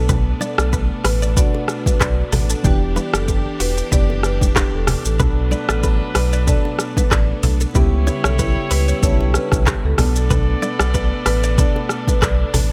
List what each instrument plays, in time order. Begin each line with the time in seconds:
Already playing: sub bass B1, synth keys B2 B3 D4 A4, string section A3 B3 D4
0.09 clean electric guitar B4, kick, low conga, shaker
0.41 clean electric guitar D5, low bongo, shaker
0.58 sub bass B1, marimba A4, clean electric guitar D5, cross-stick, shaker
0.73 clean electric guitar B4, kick, high bongo, shaker
1.05 sub bass A1, clean electric guitar B4, marimba B4, cross-stick, open hi-hat, shaker
1.22 clean electric guitar D5, shaker
1.35 synth keys B2 B3 D4 F#4, clean electric guitar B4, marimba D5, kick, low conga, shaker
1.54 high bongo
1.68 cross-stick, shaker
1.86 marimba B4, kick, low bongo, shaker
2.01 sub bass B1, clean electric guitar B4, marimba D5, kick, cross-stick, clap, high bongo, shaker
2.32 sub bass A1, clean electric guitar A4, open hi-hat, high bongo, low conga, shaker
2.50 clean electric guitar A4, shaker
2.63 sub bass E1, synth keys E3 B3 D4 G4, string section E3 G4, clean electric guitar B4, kick, low conga, shaker
2.96 clean electric guitar B4, low bongo, shaker
3.14 sub bass F#1, clean electric guitar A4, marimba A4, cross-stick, shaker
3.28 clean electric guitar G4, kick, high bongo, shaker
3.60 sub bass E1, clean electric guitar F#4, marimba B4, open hi-hat, shaker
3.77 clean electric guitar G4, shaker
3.91 sub bass F#1, synth keys E3 B3 D4 G4, clean electric guitar B4, marimba D5, kick, low conga, shaker
4.10 high bongo
4.23 marimba B4, cross-stick, shaker
4.41 sub bass E1, kick, low bongo, shaker
4.56 clean electric guitar G4, kick, cross-stick, clap, high bongo, shaker
4.73 sub bass E1, marimba A4
4.87 cross-stick, open hi-hat, high bongo, low conga, shaker
5.05 sub bass A1, marimba A4, shaker
5.19 sub bass B1, synth keys B2 B3 D4 A4, horn section F#3 D4 B4, string section A3 B3, clean electric guitar B4, kick, low conga, shaker
5.51 clean electric guitar D5, low bongo, shaker
5.69 sub bass A1, marimba A4, clean electric guitar D5, cross-stick, shaker
5.83 clean electric guitar B4, kick, high bongo, shaker
6.15 sub bass B1, clean electric guitar B4, marimba B4, cross-stick, open hi-hat, shaker
6.33 clean electric guitar D5, shaker
6.46 synth keys B2 B3 D4 A4, clean electric guitar B4, marimba D5, kick, low conga, shaker
6.65 high bongo
6.79 cross-stick, shaker
6.97 marimba B4, kick, low bongo, shaker
7.11 sub bass A1, clean electric guitar B4, marimba D5, kick, cross-stick, clap, high bongo, shaker
7.43 sub bass B1, clean electric guitar A4, open hi-hat, high bongo, low conga, shaker
7.60 clean electric guitar A4, shaker
7.74 sub bass C#2, synth keys C#3 B3 E4 G4, string section C#3 G3 E4, horn section G3 E4 C#5, clean electric guitar B4, kick, low conga, shaker
8.07 clean electric guitar C#5, low bongo, shaker
8.24 sub bass B1, marimba A4, clean electric guitar C#5, cross-stick, shaker
8.39 clean electric guitar B4, kick, high bongo, shaker
8.71 sub bass C#2, clean electric guitar B4, marimba B4, open hi-hat, shaker
8.88 clean electric guitar C#5, shaker
9.02 sub bass B1, synth keys C#3 B3 D4 A4, clean electric guitar A4, marimba C#5, kick, low conga, shaker
9.10 synth keys E4
9.21 high bongo
9.34 marimba B4, cross-stick, shaker
9.52 sub bass B1, kick, cross-stick, low bongo, shaker
9.67 clean electric guitar G4, kick, cross-stick, clap, high bongo, shaker
9.84 sub bass C#2, marimba A4
9.97 sub bass B1, synth keys B2 B3 D4 A4, string section A3 B3 D4, horn section B3 A4 D5, cross-stick, open hi-hat, high bongo, low conga, shaker
10.16 marimba A4, shaker
10.30 clean electric guitar B4, kick, low conga, shaker
10.62 clean electric guitar D5, low bongo, shaker
10.79 sub bass B1, marimba A4, clean electric guitar D5, cross-stick, shaker
10.94 clean electric guitar B4, kick, high bongo, shaker
11.26 sub bass A1, clean electric guitar B4, marimba B4, cross-stick, open hi-hat, shaker
11.43 clean electric guitar D5, shaker
11.57 synth keys B2 B3 D4 A4, clean electric guitar B4, marimba D5, kick, low conga, shaker
11.76 high bongo
11.89 cross-stick, shaker
12.08 marimba B4, kick, low bongo, shaker
12.22 sub bass B1, clean electric guitar B4, marimba D5, kick, cross-stick, clap, high bongo, shaker
12.54 sub bass A1, clean electric guitar A4, open hi-hat, high bongo, low conga, shaker